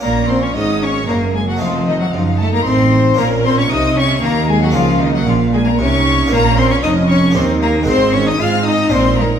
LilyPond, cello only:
\new Staff \with { instrumentName = "Cello" } { \time 3/4 \key bes \minor \tempo 4 = 115 bes8 c'16 des'16 ees'8 des'8 bes8 aes16 ges16 | f8 ees16 ges16 f8 a16 bes16 c'4 | bes8 c'16 des'16 ees'8 des'8 bes8 aes16 ges16 | f8 ees16 ges16 f8 aes16 bes16 des'4 |
\key aes \mixolydian bes8 c'16 des'16 ees'8 des'8 c'8 bes8 | c'8 des'16 ees'16 f'8 ees'8 c'8 bes8 | }